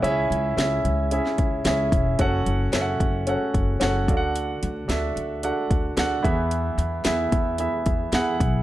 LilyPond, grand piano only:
<<
  \new Staff \with { instrumentName = "Grand piano" } { \time 4/4 \key fis \minor \tempo 4 = 111 <cis' e' gis' e''>4 <cis' e' gis' e''>4 <cis' e' gis' e''>4 <cis' e' gis' e''>4 | <cis' fis' a' fis''>4 <cis' fis' a' e'' fis''>4 <cis' fis' a' fis''>4 <cis' fis' a' fis''>8 <d' fis' a' eis'' fis''>8~ | <d' fis' a' eis'' fis''>8 r8 <d' fis' a' e''>4 <d' fis' a' fis''>4 <d' fis' a' fis''>8 <b e' gis' e''>8~ | <b e' gis' e''>8 r8 <b e' gis' e''>4 <b e' gis' e''>4 <b e' gis' fis''>4 | }
  \new Staff \with { instrumentName = "Grand piano" } { \clef bass \time 4/4 \key fis \minor cis4. r2 r8 | r2. r8 d8~ | d4 r2 r8 e8~ | e4 r2. | }
>>